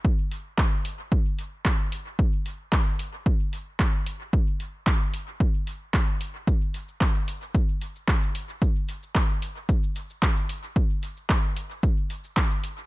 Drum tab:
HH |--o---o---o---o-|--o---o---o---o-|--o---o---o---o-|--o---o---o---o-|
SH |----------------|----------------|----------------|x-xxxxxxx-xxxxxx|
CP |----x-------x---|----x-------x---|----x-------x---|----x-------x---|
BD |o---o---o---o---|o---o---o---o---|o---o---o---o---|o---o---o---o---|

HH |--o---o---o---o-|--o---o---o---o-|
SH |x-xxxxxxxxxxxxxx|x-xxxxxxx-xxxxxx|
CP |----x-------x---|----x-------x---|
BD |o---o---o---o---|o---o---o---o---|